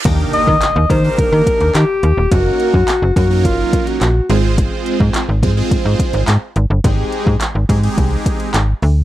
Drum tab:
CC |x---------------|----------------|----------------|----------------|
HH |x-x-x-x-x-xxx-x-|x-x-x-x-x-xxx-x-|x-x-x-x-x-xxx-x-|x-x-x-xxx-xxx-o-|
CP |----x-------x---|----x-------x---|----x-------x---|----x-------x---|
BD |o--o--o-o-o-----|o--o--o-o-o-----|o--o--o-o-o-----|o--o--o-o-o-----|